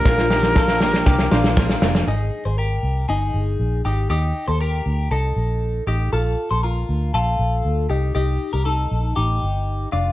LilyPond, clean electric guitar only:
\new Staff \with { instrumentName = "Clean electric guitar" } { \time 4/4 \key ees \lydian \tempo 4 = 118 <f' bes'>8 <ees' g'>8 <f' a'>8 <g' bes'>8 <d' g'>8 <d' f'>8 <f' bes'>4 | <ees' aes'>8. <aes' c''>16 <g' bes'>4 <ees' aes'>4. <ees' g'>8 | <ees' g'>8. <a' c''>16 <g' bes'>4 <ees' a'>4. <ees' g'>8 | <f' a'>8. <a' c''>16 <f' bes'>4 <f' a'>4. <ees' g'>8 |
<ees' g'>8. <g' bes'>16 <ees' a'>4 <ees' g'>4. <d' f'>8 | }